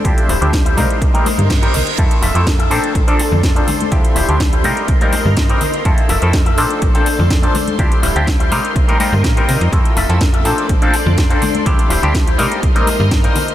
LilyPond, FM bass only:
\new Staff \with { instrumentName = "FM bass" } { \clef bass \time 4/4 \key c \mixolydian \tempo 4 = 124 d,16 r16 d,,16 d,8. c16 r16 c,16 r8 g,8 r16 c,16 r16 | f,16 r16 f,,16 f,8. bes,16 r16 bes,,16 r8 f,8 r8. | d,16 r16 d,,16 d,8. c16 r16 c,16 r8 g,8 r8. | f,16 r16 f,,16 f,8. bes,16 r16 bes,,16 r8 f,8 r8. |
d,16 r16 d,,16 d,8. c16 r16 c,16 r8 g,16 a,16 r16 c16 f,16 | f,16 r16 f,,16 f,8. bes,16 r16 bes,,16 r8 f,8 r8. | d,16 r16 d,,16 d,8. c16 r16 c,16 r8 g,8 r8. | }